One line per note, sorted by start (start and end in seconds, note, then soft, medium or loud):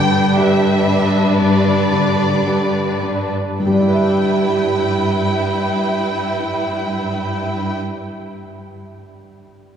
0.00 1.35 G2 soft
0.00 1.39 G2 soft
0.00 3.31 G2 soft
0.00 0.69 D3 soft
0.00 1.65 D3 soft
0.00 0.88 D4 soft
0.00 1.13 D4 soft
0.00 3.32 D4 medium
0.00 0.88 G4 soft
0.00 0.63 B4 soft
0.00 3.31 B4 medium
0.00 0.13 D5 soft
0.00 0.38 G5 soft
0.00 0.39 G5 medium
0.15 2.18 D5 soft
0.38 0.84 G4 soft
0.38 0.84 B4 soft
0.38 1.39 E5 medium
0.38 2.46 G5 soft
0.64 2.74 B4 soft
0.88 1.70 D4 soft
0.88 1.91 G4 soft
1.15 3.32 D4 soft
1.38 3.56 G2 soft
1.38 3.59 G2 soft
1.38 3.00 D5 medium
1.66 3.66 D3 soft
1.92 2.80 D3 soft
1.92 3.03 G4 soft
2.19 6.09 D5 soft
2.46 2.99 G4 soft
2.46 3.00 B4 soft
2.46 6.37 G5 soft
2.75 3.88 B4 soft
3.03 3.60 D4 soft
3.03 6.94 G4 soft
3.33 3.73 D4 soft
3.60 7.71 G2 soft
3.60 7.72 G2 soft
3.60 7.72 E4 soft
3.60 7.73 B4 soft
3.60 7.73 G5 soft
3.67 7.78 G3 soft
3.67 7.79 G3 soft
3.74 7.85 D4 soft
3.74 7.86 D4 soft
3.81 7.92 E4 soft
3.81 7.93 E4 soft
3.88 7.99 B4 soft
3.88 8.00 B4 soft
3.95 8.06 E5 soft
3.95 8.07 E5 soft